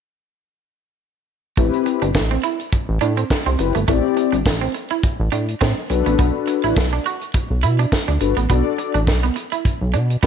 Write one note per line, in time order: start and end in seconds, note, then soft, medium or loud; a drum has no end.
1.57 1.70 A1 loud
1.57 1.71 A3 medium
1.57 2.06 C4 medium
1.57 2.06 E4 medium
1.57 2.06 G4 medium
1.57 2.06 B4 medium
1.57 kick loud
1.57 closed hi-hat medium
1.73 closed hi-hat soft
1.86 muted clean electric guitar stroke soft
1.86 closed hi-hat medium
2.02 2.12 G1 medium
2.02 2.13 D4 medium
2.02 closed hi-hat medium
2.14 2.37 A1 medium
2.14 muted clean electric guitar stroke soft
2.14 kick loud
2.14 snare loud
2.14 tambourine loud
2.31 2.42 C4 medium
2.43 2.57 E4 medium
2.43 closed hi-hat medium
2.59 closed hi-hat medium
2.72 muted clean electric guitar stroke soft
2.72 kick loud
2.72 closed hi-hat medium
2.89 2.99 A1 loud
3.01 3.24 A2 loud
3.01 3.15 D4 medium
3.01 closed hi-hat medium
3.17 3.28 C4 medium
3.17 closed hi-hat medium
3.30 kick loud
3.30 snare loud
3.30 tambourine medium
3.46 3.56 C2 medium
3.46 3.57 C4 medium
3.46 closed hi-hat soft
3.59 3.72 F#1 loud
3.59 3.72 C4 medium
3.59 3.72 E4 medium
3.59 3.73 G4 medium
3.59 3.73 B4 medium
3.59 muted clean electric guitar stroke soft
3.59 closed hi-hat medium
3.75 3.85 G1 medium
3.75 3.86 A3 medium
3.75 closed hi-hat medium
3.87 4.01 A1 loud
3.87 4.01 A3 medium
3.87 4.37 C4 medium
3.87 4.37 E4 medium
3.87 4.37 G4 medium
3.87 4.37 D5 medium
3.87 kick loud
3.87 closed hi-hat medium
4.17 muted clean electric guitar stroke soft
4.17 closed hi-hat medium
4.32 4.43 G1 medium
4.32 4.43 D4 medium
4.32 closed hi-hat soft
4.45 4.68 A1 medium
4.45 kick loud
4.45 snare loud
4.45 tambourine loud
4.61 4.72 C4 medium
4.74 muted clean electric guitar stroke soft
4.74 closed hi-hat medium
4.90 5.01 E4 medium
4.90 closed hi-hat medium
5.03 kick loud
5.03 closed hi-hat medium
5.20 5.30 A1 loud
5.32 5.55 A2 loud
5.32 5.45 D4 medium
5.32 closed hi-hat medium
5.48 closed hi-hat medium
5.61 5.74 A2 loud
5.61 5.74 C4 medium
5.61 kick loud
5.61 snare loud
5.61 tambourine medium
5.89 6.03 B1 loud
5.89 6.83 D4 medium
5.89 6.83 F#4 medium
5.89 6.83 A4 medium
5.89 6.83 B4 medium
5.89 muted clean electric guitar stroke soft
5.89 closed hi-hat medium
6.06 6.16 A1 medium
6.06 6.17 B3 medium
6.06 closed hi-hat medium
6.19 6.32 B1 loud
6.19 6.32 B3 medium
6.19 kick loud
6.19 closed hi-hat medium
6.48 muted clean electric guitar stroke soft
6.48 closed hi-hat medium
6.64 6.74 A1 medium
6.64 6.74 E4 medium
6.64 closed hi-hat soft
6.76 6.99 B1 medium
6.76 muted clean electric guitar stroke soft
6.76 kick loud
6.76 snare loud
6.76 tambourine loud
6.93 7.03 D4 medium
7.05 7.19 F#4 medium
7.05 closed hi-hat medium
7.21 closed hi-hat medium
7.34 muted clean electric guitar stroke soft
7.34 kick loud
7.34 closed hi-hat medium
7.50 7.65 B1 medium
7.63 7.86 B2 loud
7.63 7.76 E4 medium
7.63 closed hi-hat medium
7.79 7.90 D4 medium
7.79 closed hi-hat medium
7.92 kick medium
7.92 snare loud
7.92 tambourine medium
8.08 8.18 D2 medium
8.08 8.19 D4 medium
8.08 closed hi-hat soft
8.20 8.34 G1 medium
8.20 8.34 D4 medium
8.20 8.34 F#4 medium
8.20 8.34 A4 medium
8.20 8.34 B4 medium
8.20 muted clean electric guitar stroke soft
8.20 closed hi-hat medium
8.37 8.47 A1 loud
8.37 8.47 B3 medium
8.37 closed hi-hat medium
8.49 8.62 B1 loud
8.49 8.63 B3 medium
8.49 8.98 D4 medium
8.49 8.98 F#4 medium
8.49 8.98 A4 medium
8.49 8.99 D5 medium
8.49 kick loud
8.49 closed hi-hat medium
8.78 muted clean electric guitar stroke soft
8.78 closed hi-hat medium
8.94 9.09 A1 medium
8.94 9.05 D4 medium
8.94 closed hi-hat soft
9.07 9.30 B1 loud
9.07 kick loud
9.07 snare loud
9.07 tambourine loud
9.23 9.34 B3 medium
9.23 closed hi-hat soft
9.36 muted clean electric guitar stroke soft
9.36 closed hi-hat medium
9.52 9.63 E4 medium
9.52 closed hi-hat medium
9.65 kick loud
9.65 closed hi-hat medium
9.81 9.96 B1 medium
9.94 10.17 B2 loud
9.94 10.07 D4 medium
9.94 closed hi-hat medium
10.10 closed hi-hat medium
10.23 10.26 B2 loud
10.23 10.26 B3 medium
10.23 kick loud
10.23 tambourine medium